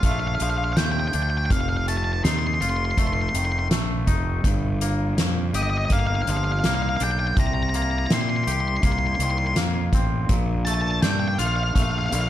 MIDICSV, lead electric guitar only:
0, 0, Header, 1, 2, 480
1, 0, Start_track
1, 0, Tempo, 731707
1, 991, Time_signature, 4, 2, 24, 8
1, 8065, End_track
2, 0, Start_track
2, 0, Title_t, "Lead electric guitar"
2, 0, Program_c, 0, 29
2, 30, Note_on_c, 0, 77, 67
2, 75, Note_off_c, 0, 77, 0
2, 78, Note_on_c, 0, 77, 51
2, 126, Note_off_c, 0, 77, 0
2, 129, Note_on_c, 0, 77, 58
2, 178, Note_off_c, 0, 77, 0
2, 181, Note_on_c, 0, 77, 56
2, 227, Note_off_c, 0, 77, 0
2, 230, Note_on_c, 0, 77, 61
2, 277, Note_off_c, 0, 77, 0
2, 279, Note_on_c, 0, 77, 55
2, 325, Note_off_c, 0, 77, 0
2, 328, Note_on_c, 0, 77, 67
2, 375, Note_off_c, 0, 77, 0
2, 378, Note_on_c, 0, 77, 50
2, 419, Note_off_c, 0, 77, 0
2, 422, Note_on_c, 0, 77, 59
2, 471, Note_off_c, 0, 77, 0
2, 478, Note_on_c, 0, 77, 48
2, 503, Note_off_c, 0, 77, 0
2, 506, Note_on_c, 0, 79, 81
2, 554, Note_off_c, 0, 79, 0
2, 557, Note_on_c, 0, 79, 59
2, 600, Note_off_c, 0, 79, 0
2, 603, Note_on_c, 0, 79, 73
2, 651, Note_off_c, 0, 79, 0
2, 654, Note_on_c, 0, 79, 63
2, 704, Note_off_c, 0, 79, 0
2, 707, Note_on_c, 0, 79, 72
2, 745, Note_off_c, 0, 79, 0
2, 748, Note_on_c, 0, 79, 69
2, 798, Note_off_c, 0, 79, 0
2, 805, Note_on_c, 0, 79, 78
2, 850, Note_off_c, 0, 79, 0
2, 853, Note_on_c, 0, 79, 68
2, 900, Note_off_c, 0, 79, 0
2, 902, Note_on_c, 0, 79, 74
2, 952, Note_off_c, 0, 79, 0
2, 956, Note_on_c, 0, 79, 61
2, 992, Note_off_c, 0, 79, 0
2, 995, Note_on_c, 0, 77, 77
2, 1050, Note_off_c, 0, 77, 0
2, 1054, Note_on_c, 0, 77, 57
2, 1107, Note_off_c, 0, 77, 0
2, 1109, Note_on_c, 0, 77, 73
2, 1157, Note_off_c, 0, 77, 0
2, 1159, Note_on_c, 0, 77, 57
2, 1215, Note_off_c, 0, 77, 0
2, 1235, Note_on_c, 0, 81, 82
2, 1290, Note_off_c, 0, 81, 0
2, 1294, Note_on_c, 0, 81, 68
2, 1338, Note_off_c, 0, 81, 0
2, 1340, Note_on_c, 0, 81, 81
2, 1394, Note_off_c, 0, 81, 0
2, 1397, Note_on_c, 0, 81, 63
2, 1452, Note_off_c, 0, 81, 0
2, 1470, Note_on_c, 0, 84, 84
2, 1514, Note_off_c, 0, 84, 0
2, 1517, Note_on_c, 0, 84, 62
2, 1562, Note_off_c, 0, 84, 0
2, 1565, Note_on_c, 0, 84, 76
2, 1614, Note_off_c, 0, 84, 0
2, 1620, Note_on_c, 0, 84, 60
2, 1665, Note_off_c, 0, 84, 0
2, 1667, Note_on_c, 0, 84, 73
2, 1710, Note_off_c, 0, 84, 0
2, 1713, Note_on_c, 0, 84, 69
2, 1762, Note_off_c, 0, 84, 0
2, 1769, Note_on_c, 0, 84, 78
2, 1812, Note_off_c, 0, 84, 0
2, 1814, Note_on_c, 0, 84, 65
2, 1864, Note_off_c, 0, 84, 0
2, 1871, Note_on_c, 0, 84, 79
2, 1907, Note_off_c, 0, 84, 0
2, 1909, Note_on_c, 0, 84, 68
2, 1956, Note_off_c, 0, 84, 0
2, 1959, Note_on_c, 0, 84, 79
2, 2008, Note_off_c, 0, 84, 0
2, 2016, Note_on_c, 0, 84, 69
2, 2054, Note_off_c, 0, 84, 0
2, 2057, Note_on_c, 0, 84, 76
2, 2106, Note_off_c, 0, 84, 0
2, 2109, Note_on_c, 0, 84, 64
2, 2156, Note_off_c, 0, 84, 0
2, 2159, Note_on_c, 0, 84, 79
2, 2208, Note_off_c, 0, 84, 0
2, 2211, Note_on_c, 0, 84, 62
2, 2260, Note_off_c, 0, 84, 0
2, 2264, Note_on_c, 0, 84, 70
2, 2307, Note_off_c, 0, 84, 0
2, 2309, Note_on_c, 0, 84, 65
2, 2352, Note_off_c, 0, 84, 0
2, 2355, Note_on_c, 0, 84, 69
2, 2404, Note_off_c, 0, 84, 0
2, 3643, Note_on_c, 0, 75, 68
2, 3688, Note_off_c, 0, 75, 0
2, 3690, Note_on_c, 0, 75, 48
2, 3737, Note_off_c, 0, 75, 0
2, 3739, Note_on_c, 0, 75, 62
2, 3786, Note_off_c, 0, 75, 0
2, 3789, Note_on_c, 0, 75, 51
2, 3837, Note_off_c, 0, 75, 0
2, 3840, Note_on_c, 0, 75, 54
2, 3886, Note_on_c, 0, 77, 81
2, 3888, Note_off_c, 0, 75, 0
2, 3929, Note_off_c, 0, 77, 0
2, 3931, Note_on_c, 0, 77, 53
2, 3978, Note_off_c, 0, 77, 0
2, 3980, Note_on_c, 0, 77, 68
2, 4029, Note_off_c, 0, 77, 0
2, 4038, Note_on_c, 0, 77, 60
2, 4077, Note_off_c, 0, 77, 0
2, 4080, Note_on_c, 0, 77, 66
2, 4129, Note_off_c, 0, 77, 0
2, 4135, Note_on_c, 0, 77, 65
2, 4177, Note_off_c, 0, 77, 0
2, 4179, Note_on_c, 0, 77, 67
2, 4224, Note_off_c, 0, 77, 0
2, 4227, Note_on_c, 0, 77, 65
2, 4275, Note_off_c, 0, 77, 0
2, 4278, Note_on_c, 0, 77, 73
2, 4325, Note_off_c, 0, 77, 0
2, 4328, Note_on_c, 0, 77, 64
2, 4375, Note_off_c, 0, 77, 0
2, 4378, Note_on_c, 0, 77, 69
2, 4423, Note_off_c, 0, 77, 0
2, 4426, Note_on_c, 0, 77, 59
2, 4473, Note_off_c, 0, 77, 0
2, 4475, Note_on_c, 0, 77, 63
2, 4518, Note_off_c, 0, 77, 0
2, 4521, Note_on_c, 0, 77, 58
2, 4568, Note_off_c, 0, 77, 0
2, 4571, Note_on_c, 0, 77, 65
2, 4613, Note_off_c, 0, 77, 0
2, 4615, Note_on_c, 0, 79, 78
2, 4664, Note_off_c, 0, 79, 0
2, 4667, Note_on_c, 0, 79, 60
2, 4717, Note_off_c, 0, 79, 0
2, 4720, Note_on_c, 0, 79, 75
2, 4769, Note_off_c, 0, 79, 0
2, 4771, Note_on_c, 0, 79, 57
2, 4824, Note_off_c, 0, 79, 0
2, 4850, Note_on_c, 0, 82, 92
2, 4897, Note_off_c, 0, 82, 0
2, 4899, Note_on_c, 0, 82, 73
2, 4946, Note_off_c, 0, 82, 0
2, 4948, Note_on_c, 0, 82, 87
2, 4997, Note_off_c, 0, 82, 0
2, 5004, Note_on_c, 0, 82, 72
2, 5045, Note_off_c, 0, 82, 0
2, 5048, Note_on_c, 0, 82, 85
2, 5093, Note_off_c, 0, 82, 0
2, 5096, Note_on_c, 0, 82, 75
2, 5131, Note_off_c, 0, 82, 0
2, 5134, Note_on_c, 0, 82, 82
2, 5182, Note_off_c, 0, 82, 0
2, 5190, Note_on_c, 0, 82, 67
2, 5236, Note_off_c, 0, 82, 0
2, 5238, Note_on_c, 0, 82, 74
2, 5287, Note_off_c, 0, 82, 0
2, 5291, Note_on_c, 0, 82, 62
2, 5334, Note_off_c, 0, 82, 0
2, 5337, Note_on_c, 0, 84, 90
2, 5385, Note_off_c, 0, 84, 0
2, 5388, Note_on_c, 0, 84, 62
2, 5439, Note_off_c, 0, 84, 0
2, 5442, Note_on_c, 0, 84, 78
2, 5484, Note_off_c, 0, 84, 0
2, 5487, Note_on_c, 0, 84, 67
2, 5534, Note_off_c, 0, 84, 0
2, 5537, Note_on_c, 0, 84, 79
2, 5588, Note_off_c, 0, 84, 0
2, 5590, Note_on_c, 0, 84, 67
2, 5642, Note_off_c, 0, 84, 0
2, 5644, Note_on_c, 0, 84, 76
2, 5692, Note_off_c, 0, 84, 0
2, 5695, Note_on_c, 0, 84, 71
2, 5746, Note_off_c, 0, 84, 0
2, 5751, Note_on_c, 0, 84, 83
2, 5792, Note_off_c, 0, 84, 0
2, 5794, Note_on_c, 0, 84, 74
2, 5846, Note_off_c, 0, 84, 0
2, 5852, Note_on_c, 0, 84, 82
2, 5893, Note_off_c, 0, 84, 0
2, 5895, Note_on_c, 0, 84, 69
2, 5946, Note_off_c, 0, 84, 0
2, 5948, Note_on_c, 0, 84, 78
2, 6000, Note_off_c, 0, 84, 0
2, 6004, Note_on_c, 0, 84, 67
2, 6054, Note_off_c, 0, 84, 0
2, 6057, Note_on_c, 0, 84, 73
2, 6102, Note_off_c, 0, 84, 0
2, 6104, Note_on_c, 0, 84, 66
2, 6153, Note_off_c, 0, 84, 0
2, 6155, Note_on_c, 0, 84, 79
2, 6206, Note_off_c, 0, 84, 0
2, 6212, Note_on_c, 0, 84, 63
2, 6263, Note_off_c, 0, 84, 0
2, 6985, Note_on_c, 0, 81, 101
2, 7042, Note_off_c, 0, 81, 0
2, 7047, Note_on_c, 0, 81, 83
2, 7092, Note_off_c, 0, 81, 0
2, 7095, Note_on_c, 0, 81, 94
2, 7151, Note_off_c, 0, 81, 0
2, 7156, Note_on_c, 0, 81, 73
2, 7213, Note_off_c, 0, 81, 0
2, 7232, Note_on_c, 0, 79, 95
2, 7283, Note_off_c, 0, 79, 0
2, 7285, Note_on_c, 0, 79, 71
2, 7341, Note_off_c, 0, 79, 0
2, 7344, Note_on_c, 0, 79, 86
2, 7396, Note_off_c, 0, 79, 0
2, 7398, Note_on_c, 0, 79, 66
2, 7454, Note_off_c, 0, 79, 0
2, 7468, Note_on_c, 0, 77, 78
2, 7520, Note_off_c, 0, 77, 0
2, 7523, Note_on_c, 0, 77, 61
2, 7579, Note_off_c, 0, 77, 0
2, 7584, Note_on_c, 0, 77, 73
2, 7630, Note_off_c, 0, 77, 0
2, 7632, Note_on_c, 0, 77, 58
2, 7688, Note_off_c, 0, 77, 0
2, 7708, Note_on_c, 0, 77, 97
2, 7755, Note_off_c, 0, 77, 0
2, 7757, Note_on_c, 0, 77, 69
2, 7808, Note_off_c, 0, 77, 0
2, 7813, Note_on_c, 0, 77, 86
2, 7859, Note_off_c, 0, 77, 0
2, 7862, Note_on_c, 0, 77, 77
2, 7909, Note_off_c, 0, 77, 0
2, 7912, Note_on_c, 0, 77, 92
2, 7952, Note_off_c, 0, 77, 0
2, 7955, Note_on_c, 0, 77, 78
2, 8006, Note_off_c, 0, 77, 0
2, 8010, Note_on_c, 0, 77, 80
2, 8060, Note_off_c, 0, 77, 0
2, 8065, End_track
0, 0, End_of_file